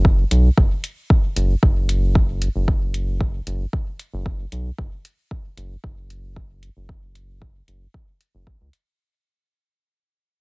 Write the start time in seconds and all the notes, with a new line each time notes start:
Already playing: F#1
0.05 kick
0.31 B1, closed hi-hat
0.58 F#1, kick
0.84 closed hi-hat
1.10 kick
1.36 F#1, closed hi-hat
1.63 F#1, kick
1.89 closed hi-hat
2.15 kick
2.42 closed hi-hat
2.56 F#1
2.68 kick
2.94 closed hi-hat
3.21 kick
3.47 F#1, closed hi-hat
3.73 kick
4.00 closed hi-hat
4.13 F#1
4.26 kick
4.52 B1, closed hi-hat
4.78 F#1, kick
5.05 closed hi-hat
5.31 kick
5.57 F#1, closed hi-hat
5.84 F#1, kick
6.10 closed hi-hat
6.36 kick
6.63 closed hi-hat
6.77 F#1
6.89 kick
7.15 closed hi-hat
7.42 kick
7.68 F#1, closed hi-hat
7.94 kick
8.21 closed hi-hat
8.35 F#1
8.47 A1, kick
8.61 C#2
8.73 closed hi-hat